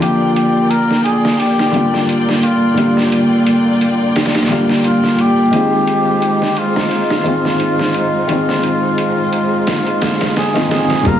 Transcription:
0.00 1.68 D3 medium
0.00 1.69 F3 medium
0.00 5.49 A#3 medium
0.00 1.70 A#3 medium
0.00 11.01 F4 medium
0.00 1.71 F4 medium
0.00 0.34 G4 medium
0.00 5.49 D5 medium
0.00 5.49 G5 medium
0.00 closed hi-hat medium
0.35 0.71 G4 medium
0.35 closed hi-hat medium
0.70 1.03 A#4 loud
0.70 closed hi-hat medium
0.91 snare soft
1.03 1.40 G#4 medium
1.03 closed hi-hat medium
1.25 snare medium
1.39 2.08 G4 medium
1.39 open hi-hat medium
1.59 snare soft
1.71 2.72 D3 medium
1.71 2.73 G3 medium
1.71 2.74 A#3 medium
1.71 closed hi-hat medium
1.76 2.75 F4 medium
1.94 snare soft
2.09 closed hi-hat medium
2.29 snare soft
2.43 3.08 F4 loud
2.43 closed hi-hat medium
2.74 4.45 D3 medium
2.74 4.45 G3 medium
2.74 4.46 A#3 medium
2.74 closed hi-hat medium
2.79 4.47 F4 medium
2.97 snare soft
3.12 closed hi-hat medium
3.47 closed hi-hat medium
3.81 closed hi-hat medium
4.16 snare medium
4.16 closed hi-hat medium
4.25 snare medium
4.25 closed hi-hat medium
4.35 snare medium
4.35 closed hi-hat medium
4.42 snare medium
4.42 closed hi-hat medium
4.48 5.49 D3 medium
4.48 5.49 G3 medium
4.48 5.50 A#3 medium
4.48 closed hi-hat medium
4.52 5.51 F4 medium
4.69 snare soft
4.84 5.22 F4 medium
4.84 closed hi-hat medium
5.04 snare soft
5.19 6.60 G4 loud
5.19 closed hi-hat medium
5.51 7.21 D#3 medium
5.51 7.22 G#3 medium
5.51 11.01 G#3 medium
5.51 7.23 C4 medium
5.51 11.01 D#4 medium
5.51 11.01 C5 medium
5.51 closed hi-hat medium
5.56 7.23 F4 medium
5.87 closed hi-hat medium
6.22 closed hi-hat medium
6.42 snare soft
6.56 10.37 F4 medium
6.56 closed hi-hat medium
6.76 snare medium
6.91 open hi-hat medium
7.10 snare medium
7.24 8.25 D#3 medium
7.24 8.25 G#3 medium
7.24 8.26 C4 medium
7.24 closed hi-hat medium
7.29 8.27 F4 medium
7.45 snare soft
7.60 closed hi-hat medium
7.79 snare soft
7.94 closed hi-hat medium
8.27 9.97 D#3 medium
8.27 9.98 G#3 medium
8.27 9.99 C4 medium
8.27 closed hi-hat medium
8.32 9.99 F4 loud
8.49 snare soft
8.63 closed hi-hat medium
8.98 closed hi-hat medium
9.33 closed hi-hat medium
9.67 snare loud
9.67 closed hi-hat medium
9.86 closed hi-hat soft
10.02 snare medium
10.02 closed hi-hat medium
10.21 snare medium
10.21 closed hi-hat medium
10.36 10.69 G#4 medium
10.36 snare medium
10.36 closed hi-hat medium
10.54 10.67 D#3 medium
10.54 10.68 G#3 medium
10.54 10.68 C4 medium
10.54 10.69 F4 medium
10.54 snare medium
10.54 closed hi-hat medium
10.69 11.00 D#3 medium
10.69 11.01 G#3 medium
10.69 11.01 C4 medium
10.69 11.02 G#4 loud
10.69 11.09 G#4 medium
10.69 snare medium
10.69 closed hi-hat medium
10.90 snare medium
10.90 closed hi-hat medium
11.02 11.20 G1 loud
11.02 11.20 D3 medium
11.02 11.20 G3 medium
11.02 11.20 A#3 medium
11.02 11.20 G4 medium
11.02 11.20 A#4 medium
11.02 11.20 F5 medium
11.02 11.20 A#5 medium
11.02 kick loud
11.02 closed hi-hat medium
11.07 11.20 F4 loud
11.07 11.20 A#4 loud

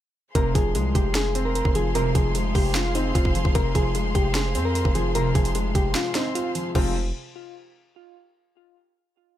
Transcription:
0.35 0.54 F1 loud
0.35 1.35 C3 loud
0.35 6.71 G#4 medium
0.35 0.51 A#4 loud
0.35 6.71 C5 medium
0.35 6.71 F5 medium
0.35 6.71 C6 medium
0.35 kick loud
0.35 closed hi-hat medium
0.55 0.77 F1 loud
0.55 1.55 F3 medium
0.55 0.71 G#4 medium
0.55 kick loud
0.55 closed hi-hat medium
0.75 0.94 C2 loud
0.75 1.75 G#3 medium
0.75 closed hi-hat medium
0.95 1.62 F1 loud
0.95 1.11 G4 medium
0.95 kick medium
0.95 closed hi-hat medium
1.15 1.43 G#4 medium
1.15 snare loud
1.15 closed hi-hat medium
1.35 2.35 C4 medium
1.35 closed hi-hat medium
1.45 1.53 A#4 medium
1.55 1.71 A#4 medium
1.55 closed hi-hat medium
1.65 2.13 F1 loud
1.65 kick medium
1.75 2.14 F3 medium
1.75 1.91 G#4 medium
1.75 closed hi-hat medium
1.95 2.95 C3 loud
1.95 2.11 A#4 loud
1.95 closed hi-hat medium
2.15 2.54 F1 loud
2.15 3.15 F3 medium
2.15 2.31 G#4 medium
2.15 kick loud
2.15 closed hi-hat medium
2.35 3.35 G#3 medium
2.35 closed hi-hat medium
2.55 3.13 F1 loud
2.55 2.71 G4 medium
2.55 kick medium
2.55 open hi-hat medium
2.75 2.91 F4 medium
2.75 snare loud
2.75 closed hi-hat medium
2.95 3.55 C4 medium
2.95 3.11 D#4 medium
2.95 closed hi-hat medium
3.15 3.44 F1 loud
3.15 3.31 F4 medium
3.15 kick loud
3.15 closed hi-hat medium
3.25 kick medium
3.35 3.55 F3 medium
3.35 closed hi-hat medium
3.45 3.55 F1 loud
3.45 kick medium
3.55 3.74 F1 loud
3.55 4.55 C3 loud
3.55 3.71 A#4 medium
3.55 kick loud
3.55 closed hi-hat medium
3.75 4.13 F1 loud
3.75 4.75 F3 medium
3.75 3.91 G#4 medium
3.75 kick loud
3.75 closed hi-hat medium
3.95 4.95 G#3 medium
3.95 closed hi-hat medium
4.15 4.57 F1 loud
4.15 4.31 G4 medium
4.15 kick medium
4.15 closed hi-hat medium
4.35 4.63 G#4 medium
4.35 snare loud
4.35 closed hi-hat medium
4.55 4.84 F2 loud
4.55 5.55 C4 medium
4.55 closed hi-hat medium
4.65 4.73 A#4 medium
4.75 4.91 A#4 medium
4.75 closed hi-hat medium
4.85 5.33 F1 loud
4.85 kick medium
4.95 5.34 F3 medium
4.95 5.11 G#4 medium
4.95 closed hi-hat medium
5.15 6.15 C3 loud
5.15 5.31 A#4 loud
5.15 closed hi-hat medium
5.35 5.74 F1 loud
5.35 6.35 F3 medium
5.35 5.51 G#4 medium
5.35 kick medium
5.35 closed hi-hat medium
5.45 closed hi-hat medium
5.55 6.55 G#3 medium
5.55 closed hi-hat medium
5.75 5.94 F1 loud
5.75 5.91 G4 medium
5.75 kick medium
5.75 closed hi-hat medium
5.95 6.11 F4 medium
5.95 snare loud
5.95 closed hi-hat medium
6.15 6.74 C4 medium
6.15 6.31 D#4 medium
6.15 snare loud
6.15 closed hi-hat medium
6.35 6.51 F4 medium
6.35 closed hi-hat medium
6.55 6.74 F3 medium
6.55 closed hi-hat medium
6.75 7.12 F1 loud
6.75 6.94 C3 medium
6.75 6.94 F3 medium
6.75 6.94 G#3 medium
6.75 6.94 C4 loud
6.75 6.94 F4 medium
6.75 6.94 G#4 medium
6.75 6.94 C5 medium
6.75 kick loud
6.75 crash medium

